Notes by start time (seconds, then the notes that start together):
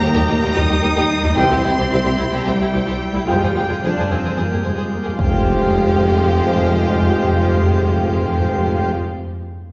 Already playing: G3 A#3 D#4 A#4 G5 A#5
0.00 D#2 G3 D#4 G4 A#4
0.14 D#2 G3 D#4 G4 A#4
0.27 D#2 G3 D#4 G4
0.41 D#2 G3 D#4 G4 A#4
0.54 D#2 G3 D#4 G4 A#4 D#6
0.68 D#2 G3 D#4 G4
0.81 D#2 G3 D#4 G4 A#4
0.85 D#2
0.95 D#2 G3 D#4 G4 A#4
1.23 D#2 G3 D#4 G4
1.35 C2 C3 E3 G3 C4 E4 G4 C5 G5 C6
1.39 C2
1.51 C2 G3 E4 G4 C5
1.63 C2 G3 E4 G4
1.77 C2 G3 E4 G4 C5
1.90 C2 G3 E4 G4 C5
2.05 C2 G3 E4 G4 C5
2.17 C2 G3 E4 G4
2.32 C2 G3 E4 G4 C5
2.45 C2 G3 E4 G4 C5 G5
2.60 C2 G3 E4 G4
2.72 C2 G3 E4 G4 C5
2.85 C2 G3 E4 G4 C5
3.14 C2 G3 E4 G4
3.25 F1 F2 F3 G3 G#3 C4 F4 G4 C5 G5
3.29 G#4
3.39 F2 G#3 F4
3.43 G#4 C5
3.55 F1 F2 G#3 F4 G4 G#4
3.68 F2 G#3 F4 G#4 C5
3.83 F1 F2 F3 D4 G#4 C5 F5
3.97 F2 G#4 C5
4.09 F1 F2 C4 G4 G#4
4.24 F2 G#4 C5
4.37 F1 F2 A#3 G#4 C5
4.52 F2 G4 G#4
4.63 F1 F2 G#3 G#4 C5
4.76 F2 G#4 C5
4.93 A#3
5.04 F2 G4 G#4
5.17 F1 F2 F3 G#3 C4 F4 G4 C5 F5 G5, impact
5.27 F2
5.34 F2
5.42 F2
5.49 F2
5.57 F2
5.66 F2
5.73 F2
5.80 F2
5.89 F2
5.96 F2
6.04 F2
6.12 F2
6.19 F2
6.26 F2
6.34 F2
6.42 F2
6.50 F2
6.57 F2
6.65 F2
6.72 F2
6.80 F2
6.87 F2
6.94 F2
7.02 F2
7.10 F2
7.17 F2
7.24 F2
7.32 F2
7.40 F2
7.48 F2
7.56 F2
7.63 F2
7.71 F2
7.79 F2
7.87 F2
7.95 F2
8.02 F2
8.10 F2
8.18 F2
8.26 F2
8.34 F2
8.43 F2
8.50 F2
8.58 F2
8.66 F2
8.74 F2
8.82 F2